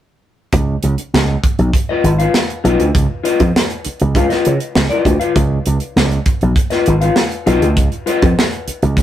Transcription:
0.52 slap bass C#2, kick, closed hi-hat
0.83 slap bass C#2, closed hi-hat
0.98 closed hi-hat
1.13 slap bass C#2, snare
1.44 kick, closed hi-hat
1.58 slap bass B1, closed hi-hat
1.74 kick, closed hi-hat
1.89 clean electric guitar F4 B4 D#5
2.03 slap bass G#1, closed hi-hat
2.19 clean electric guitar F4 B4 F5, closed hi-hat
2.34 snare
2.50 closed hi-hat
2.64 slap bass B1, clean electric guitar F4 B4 D#5, closed hi-hat
2.79 slap bass D2, closed hi-hat
2.95 slap bass C#2, kick, closed hi-hat
3.24 clean electric guitar F4 B4 D#5, closed hi-hat
3.40 slap bass F2, kick, closed hi-hat
3.56 snare
3.70 closed hi-hat
3.85 muted slap bass stroke, closed hi-hat
4.00 slap bass C#2, closed hi-hat
4.15 slap bass C#2, clean electric guitar F4 B4 F5, kick, closed hi-hat
4.30 clean electric guitar F4 B4 D#5, snare, closed hi-hat
4.45 slap bass C#3, closed hi-hat
4.60 closed hi-hat
4.75 slap bass C#2, snare
4.89 clean electric guitar F4 B4 D#5, closed hi-hat
5.05 slap bass D2, kick, closed hi-hat
5.20 clean electric guitar F4 B4 F5, closed hi-hat
5.36 slap bass C#2, kick, closed hi-hat
5.66 slap bass C#2, closed hi-hat
5.80 closed hi-hat
5.96 slap bass C#2, snare
6.11 closed hi-hat
6.26 kick, closed hi-hat
6.41 slap bass B1, closed hi-hat
6.56 kick, closed hi-hat
6.70 clean electric guitar F4 B4 D#5, snare, closed hi-hat
6.86 slap bass G#1, closed hi-hat
7.01 clean electric guitar F4 B4 F5, closed hi-hat
7.16 snare
7.31 closed hi-hat
7.46 slap bass B1, clean electric guitar F4 B4 D#5, closed hi-hat
7.62 slap bass D2, closed hi-hat
7.77 slap bass C#2, kick, closed hi-hat
7.92 closed hi-hat
8.06 clean electric guitar F4 B4 D#5, closed hi-hat
8.22 slap bass F2, kick, closed hi-hat
8.39 snare
8.53 closed hi-hat
8.67 muted slap bass stroke, closed hi-hat
8.82 slap bass C#2, closed hi-hat
8.97 slap bass C#2, kick, closed hi-hat

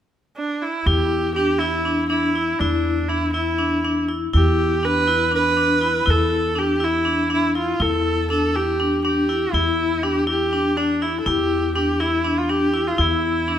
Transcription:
0.38 viola D4
0.62 viola E4
0.86 upright bass E2, vibraphone E4, viola G4
1.35 vibraphone D4, viola G4
1.58 viola E4, vibraphone E4
1.85 vibraphone D4
2.08 vibraphone D4, viola E4
2.35 vibraphone E4
2.59 upright bass E2, viola D4, vibraphone E4
3.08 vibraphone D4, viola E4
3.33 viola E4, vibraphone E4
3.59 vibraphone D4
3.85 vibraphone D4
4.09 vibraphone E4
4.33 upright bass E2, vibraphone E4, viola G4
4.83 vibraphone D4, viola B4
5.08 vibraphone E4
5.32 vibraphone D4, viola B4
5.57 vibraphone D4
5.81 vibraphone E4
6.06 upright bass E2, vibraphone E4
6.10 viola A4
6.55 vibraphone D4, viola G4
6.80 vibraphone E4, viola E4
7.05 vibraphone D4
7.30 vibraphone D4, viola E4
7.55 vibraphone E4, viola F4
7.80 upright bass E2, vibraphone E4, viola A4
8.30 vibraphone D4, viola A4
8.54 vibraphone E4, viola G4
8.80 vibraphone D4
9.04 vibraphone D4, viola G4
9.29 vibraphone E4
9.53 upright bass E2, viola E4, vibraphone E4
10.03 vibraphone D4, viola G4
10.27 vibraphone E4, viola G4
10.53 vibraphone D4
10.77 viola D4, vibraphone D4
11.02 viola E4, vibraphone E4
11.20 viola A4
11.26 upright bass E2, vibraphone E4, viola G4
11.75 vibraphone D4, viola G4
12.00 vibraphone E4, viola E4
12.25 vibraphone D4
12.38 viola F4
12.50 vibraphone D4, viola G4
12.74 vibraphone E4
12.87 viola F4
12.98 upright bass E2, vibraphone E4, viola E4
13.48 vibraphone D4

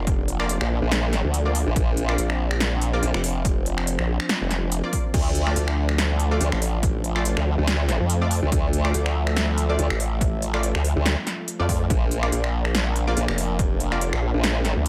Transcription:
Already playing: wobble bass F1, supersaw synth F3 A#3 D4
0.07 kick, closed hi-hat
0.28 closed hi-hat
0.40 synth stab A#3 F4 D5, finger snap
0.49 closed hi-hat
0.61 wobble bass A#1, finger snap
0.82 wobble bass A#1
0.92 snare, closed hi-hat
1.13 snare, closed hi-hat
1.24 wobble bass D2
1.34 closed hi-hat
1.45 synth stab A#3 F4 D5
1.55 open hi-hat
1.67 wobble bass A#1
1.76 wobble bass A#1, supersaw synth C4, kick, closed hi-hat
1.97 closed hi-hat
2.09 synth stab A#3 F4 D5, finger snap
2.18 wobble bass A#1, closed hi-hat
2.30 finger snap
2.51 finger snap
2.60 snare, closed hi-hat
2.82 closed hi-hat
2.93 synth stab A#3 F4 D5
3.03 wobble bass A#1, closed hi-hat
3.14 wobble bass F1, finger snap
3.24 open hi-hat
3.45 kick, closed hi-hat
3.66 closed hi-hat
3.78 finger snap
3.87 closed hi-hat
3.99 wobble bass A#1, finger snap
4.20 finger snap
4.29 snare, closed hi-hat
4.41 wobble bass F1
4.51 snare, closed hi-hat
4.72 closed hi-hat
4.83 synth stab A#3 F4 D5
4.93 kick, open hi-hat
5.14 wobble bass D2, supersaw synth A3 D4, kick, closed hi-hat, crash
5.35 closed hi-hat
5.47 synth stab A3 F4 D5, finger snap
5.56 wobble bass D2, closed hi-hat
5.68 finger snap
5.89 finger snap
5.98 snare, closed hi-hat
6.20 closed hi-hat
6.31 synth stab A3 F4 D5
6.41 wobble bass D2, closed hi-hat
6.52 wobble bass A1, finger snap
6.62 open hi-hat
6.83 kick, closed hi-hat
7.04 closed hi-hat
7.16 synth stab A3 F4 D5, finger snap
7.25 closed hi-hat
7.37 wobble bass D2, finger snap
7.58 wobble bass D2
7.67 snare, closed hi-hat
7.89 snare, closed hi-hat
8.00 wobble bass F2
8.10 closed hi-hat
8.21 synth stab A3 F4 D5
8.31 open hi-hat
8.43 wobble bass D2
8.52 wobble bass D2, supersaw synth E5, kick, closed hi-hat
8.73 closed hi-hat
8.85 synth stab A3 F4 D5, finger snap
8.94 wobble bass D2, closed hi-hat
9.06 finger snap
9.27 finger snap
9.37 snare, closed hi-hat
9.58 closed hi-hat
9.69 synth stab A3 F4 D5
9.79 wobble bass D2, closed hi-hat
9.90 wobble bass A1, finger snap
10.00 open hi-hat
10.21 kick, closed hi-hat
10.42 closed hi-hat
10.54 synth stab A3 F4 D5, finger snap
10.63 closed hi-hat
10.75 wobble bass D2, finger snap
10.85 open hi-hat
10.96 wobble bass D2
11.06 snare, closed hi-hat
11.27 snare, closed hi-hat
11.48 closed hi-hat
11.59 wobble bass F2, synth stab A3 F4 D5
11.69 kick, open hi-hat
11.90 wobble bass A#1, supersaw synth F3 A#3 D4, kick, closed hi-hat
12.11 closed hi-hat
12.23 synth stab A#3 F4 D5, finger snap
12.32 wobble bass A#1, closed hi-hat
12.44 finger snap
12.65 finger snap
12.75 snare, closed hi-hat
12.96 closed hi-hat
13.07 synth stab A#3 F4 D5
13.17 wobble bass A#1, closed hi-hat
13.28 wobble bass F1, finger snap
13.38 open hi-hat
13.59 kick, closed hi-hat
13.80 closed hi-hat
13.92 synth stab A#3 F4 D5, finger snap
14.01 closed hi-hat
14.13 wobble bass A#1, finger snap
14.34 wobble bass A#1
14.44 snare, closed hi-hat
14.65 snare, closed hi-hat
14.76 wobble bass D2

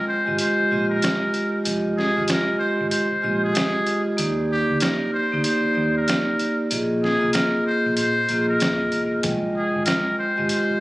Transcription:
Already playing: vibraphone G#3 F4 D#5 G5
0.08 muted trumpet C5
0.25 fingered electric bass G#1, vibraphone G#3 F4 G4 D#5
0.39 muted trumpet C5, closed hi-hat
0.59 muted fingered electric bass stroke
0.71 fingered electric bass A#1, vibraphone G#3 F4 G4 D#5
0.90 muted trumpet A#4
1.02 snare, closed hi-hat
1.34 closed hi-hat
1.64 fingered electric bass F1, vibraphone G#3 F4 G4 D#5, closed hi-hat
1.97 muted trumpet G#4, snare
2.16 fingered electric bass G#1, vibraphone G#3 F4 G4 D#5
2.28 vibraphone G#3 F4 G4 D#5, snare, closed hi-hat
2.32 muted trumpet A#4
2.59 muted trumpet C5
2.81 fingered electric bass G#1
2.90 muted trumpet C5, closed hi-hat
3.12 muted fingered electric bass stroke
3.22 fingered electric bass A#1, vibraphone G#3 F4 G4 D#5
3.44 muted trumpet G#4
3.53 vibraphone G#3 F4 G4 D#5, snare, closed hi-hat
3.86 vibraphone G#3 F4 G4 D#5, closed hi-hat
4.17 fingered electric bass D#2, vibraphone A#3 D#4 G4 D5, closed hi-hat
4.52 muted trumpet G4
4.70 fingered electric bass D2
4.80 muted trumpet A#4, snare, closed hi-hat
5.14 muted trumpet C5
5.32 fingered electric bass D2, vibraphone A#3 D#4 G4 D5
5.44 muted trumpet C5, closed hi-hat
5.65 muted fingered electric bass stroke
5.73 fingered electric bass D#2, vibraphone A#3 D#4 G4 D5
5.97 muted trumpet A#4
6.08 snare, closed hi-hat
6.39 closed hi-hat
6.71 fingered electric bass A#1, vibraphone A#3 F4 G#4 D#5, closed hi-hat
7.04 muted trumpet G#4, snare
7.20 fingered electric bass C2, vibraphone A#3 F4 G#4 D#5
7.33 vibraphone A#3 F4 G#4 D#5, muted trumpet A#4, snare, closed hi-hat
7.67 muted trumpet C5
7.86 fingered electric bass A#1
7.97 fingered electric bass A#2, muted trumpet C5, closed hi-hat
8.29 fingered electric bass A#1, vibraphone A#3 F4 G#4 D#5, closed hi-hat
8.49 muted trumpet A#4
8.60 fingered electric bass D#1, vibraphone A#3 F4 G#4 D#5, snare, closed hi-hat
8.92 fingered electric bass E1, vibraphone A#3 F4 G#4 D#5, closed hi-hat
9.23 fingered electric bass F1, vibraphone G#3 F4 D#5 G5, kick, closed hi-hat
9.57 muted trumpet G#4
9.76 fingered electric bass G#1
9.85 muted trumpet A#4, snare, closed hi-hat
10.19 muted trumpet C5
10.36 fingered electric bass G#1, vibraphone G#3 F4 G4 D#5
10.49 muted trumpet C5, closed hi-hat
10.70 muted fingered electric bass stroke

